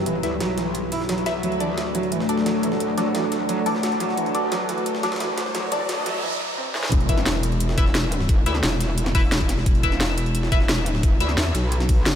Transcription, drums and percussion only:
0.06 closed hi-hat
0.23 snare, closed hi-hat
0.40 snare, closed hi-hat
0.58 snare, closed hi-hat
0.75 closed hi-hat
0.92 closed hi-hat, open hi-hat
1.01 snare
1.09 snare, closed hi-hat
1.18 closed hi-hat
1.26 snare, closed hi-hat
1.43 closed hi-hat
1.52 closed hi-hat
1.60 closed hi-hat
1.78 snare, closed hi-hat
1.95 closed hi-hat
2.03 closed hi-hat
2.12 closed hi-hat
2.20 snare
2.29 closed hi-hat
2.38 snare
2.46 snare, closed hi-hat
2.63 closed hi-hat
2.72 snare
2.80 closed hi-hat
2.98 snare, closed hi-hat
3.15 snare, closed hi-hat
3.32 snare, closed hi-hat
3.49 closed hi-hat
3.66 closed hi-hat, open hi-hat
3.75 snare
3.83 snare, closed hi-hat
3.92 closed hi-hat
4.00 snare, closed hi-hat
4.09 snare
4.17 closed hi-hat
4.26 closed hi-hat
4.35 closed hi-hat
4.52 snare, closed hi-hat
4.69 snare, closed hi-hat
4.78 closed hi-hat
4.86 closed hi-hat
4.95 snare
5.03 snare, closed hi-hat
5.12 snare, closed hi-hat
5.16 snare, closed hi-hat
5.20 snare, closed hi-hat
5.38 snare, closed hi-hat
5.46 snare
5.55 snare, closed hi-hat
5.72 snare, closed hi-hat
5.89 snare, closed hi-hat
6.06 snare, closed hi-hat
6.75 snare
6.83 snare
6.92 kick, closed hi-hat
7.00 closed hi-hat
7.09 kick, closed hi-hat
7.18 snare
7.26 snare, closed hi-hat
7.43 closed hi-hat
7.52 closed hi-hat
7.60 closed hi-hat
7.69 snare
7.78 kick, closed hi-hat
7.86 snare
7.95 snare, closed hi-hat
8.12 closed hi-hat
8.21 snare
8.29 kick, closed hi-hat
8.46 snare, closed hi-hat
8.55 snare
8.63 snare, closed hi-hat
8.81 snare, closed hi-hat
8.98 closed hi-hat
9.06 snare
9.15 kick, closed hi-hat, open hi-hat
9.32 snare, closed hi-hat
9.41 kick, closed hi-hat
9.49 snare, closed hi-hat
9.58 snare
9.66 kick, closed hi-hat
9.75 closed hi-hat
9.83 kick, closed hi-hat
9.92 snare
10.01 snare, closed hi-hat
10.18 closed hi-hat
10.26 closed hi-hat
10.35 closed hi-hat
10.43 snare
10.52 kick, closed hi-hat
10.60 snare
10.69 snare, closed hi-hat
10.86 closed hi-hat
10.95 snare
11.03 kick, closed hi-hat
11.20 snare, closed hi-hat
11.29 snare
11.38 snare, closed hi-hat
11.55 snare, closed hi-hat
11.72 closed hi-hat
11.80 snare
11.89 kick, closed hi-hat, open hi-hat
12.06 snare, closed hi-hat

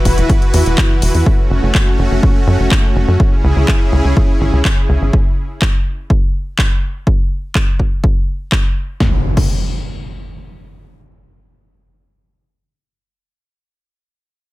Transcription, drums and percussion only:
0.05 kick, open hi-hat
0.18 closed hi-hat
0.29 kick, closed hi-hat
0.42 closed hi-hat
0.54 open hi-hat
0.66 closed hi-hat
0.78 kick, clap, closed hi-hat
1.02 open hi-hat
1.15 open hi-hat
1.26 kick
1.75 kick, clap
2.23 kick
2.71 kick, clap
3.20 kick
3.68 kick, clap
4.17 kick
4.65 kick, clap
5.13 kick
5.62 kick, clap
6.10 kick
6.59 kick, clap
7.07 kick
7.55 kick, clap
7.79 kick
8.04 kick
8.52 kick, clap
9.00 kick, snare
9.37 kick, crash

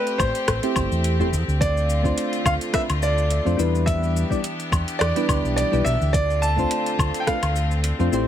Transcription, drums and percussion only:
0.07 closed hi-hat, shaker
0.20 kick, low woodblock, shaker
0.35 closed hi-hat, shaker
0.48 kick, cross-stick, closed hi-hat, low woodblock, shaker
0.63 closed hi-hat, shaker
0.76 kick, low woodblock, shaker
0.92 shaker
1.04 closed hi-hat, shaker
1.21 shaker
1.33 shaker
1.49 shaker
1.61 kick, closed hi-hat, shaker
1.77 shaker
1.90 shaker
2.05 kick, shaker
2.18 closed hi-hat, shaker
2.33 closed hi-hat, shaker
2.46 kick, low woodblock, shaker
2.61 closed hi-hat, shaker
2.74 kick, cross-stick, closed hi-hat, shaker
2.90 closed hi-hat, low woodblock, shaker
3.02 shaker
3.18 shaker
3.31 closed hi-hat, shaker
3.46 shaker
3.59 shaker
3.75 shaker
3.87 kick, closed hi-hat, shaker
4.03 shaker
4.17 shaker
4.31 kick, shaker
4.44 closed hi-hat, shaker
4.60 closed hi-hat, shaker
4.72 kick, low woodblock, shaker
4.88 closed hi-hat, shaker
5.01 cross-stick, closed hi-hat, low woodblock, shaker
5.16 closed hi-hat, shaker
5.29 kick, low woodblock, shaker
5.45 shaker
5.58 closed hi-hat, shaker
5.73 shaker
5.86 shaker
6.02 shaker
6.14 kick, closed hi-hat, shaker
6.30 shaker
6.43 shaker
6.58 kick, shaker
6.71 closed hi-hat, shaker
6.86 closed hi-hat, shaker
6.99 kick, low woodblock, shaker
7.14 closed hi-hat, shaker
7.27 kick, cross-stick, closed hi-hat, shaker
7.43 closed hi-hat, low woodblock, shaker
7.56 shaker
7.71 shaker
7.84 closed hi-hat, shaker
8.00 shaker
8.13 shaker

